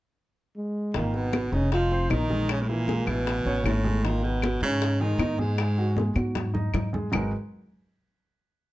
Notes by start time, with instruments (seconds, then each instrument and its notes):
0.56 trombone G#3
0.94 upright bass G#1, baritone saxophone A#2, grand piano D#3 D#4, trombone A#3, high bongo, high conga
1.13 baritone saxophone B2, trombone B3, high bongo, high conga
1.33 grand piano F#3 F#4, high bongo, high conga, claves
1.52 upright bass F1, baritone saxophone C#3, trombone C#4, grand piano D#4 D#5, high bongo, high conga
1.72 baritone saxophone F3, trombone F4, high bongo, high conga
1.91 grand piano C4 C5, high bongo, high conga
2.10 upright bass A#1, baritone saxophone D#3, grand piano D#4 D#5, trombone D#4, high bongo, low bongo, high conga, claves
2.30 grand piano G#3 G#4, high conga
2.49 baritone saxophone C#3, trombone C#4, high bongo, claves
2.62 baritone saxophone A2, trombone A3
2.69 baritone saxophone A#2, grand piano E3 E4, trombone A#3, high bongo, high conga
2.88 grand piano G#3 G#4, high bongo, high conga
3.06 upright bass A1, baritone saxophone B2, grand piano E3 E4, trombone B3, high bongo, high conga, claves
3.27 high bongo, high conga
3.45 upright bass A1, grand piano C#4 C#5, high bongo, high conga
3.64 upright bass G#1, baritone saxophone A2, trombone A3, high bongo, low bongo, high conga, claves
3.84 grand piano G#3 G#4, high conga
4.04 baritone saxophone A#2, grand piano D#3 D#4, trombone A#3, high bongo
4.24 baritone saxophone B2, trombone B3, high bongo, high conga
4.42 grand piano F#3 F#4, high bongo, high conga, claves
4.61 upright bass G#2, baritone saxophone C#3, trombone C#4, grand piano D#4 D#5, high bongo, high conga
4.82 high bongo, high conga
5.00 baritone saxophone D#3, grand piano G#3 G#4, trombone D#4, high bongo, high conga
5.18 upright bass G#2, grand piano D#4 D#5, high bongo, low bongo, high conga, claves
5.38 baritone saxophone G#2, grand piano G#3 G#4, trombone G#3, high conga
5.58 high bongo, claves
5.78 grand piano F#3 F#4, high bongo, high conga
5.96 grand piano G#3 G#4, high bongo, high conga
6.15 upright bass G#2, grand piano F#3 F#4, high bongo, high conga, claves
6.35 high bongo, low conga
6.54 grand piano D#4 D#5, high bongo, low conga
6.73 upright bass G#2, high bongo, low bongo, low conga, claves
6.93 grand piano G#3 G#4, low conga
7.12 upright bass G#1, grand piano G#3 D#4 F#4 G#4 A#4 B4, low bongo, low conga, claves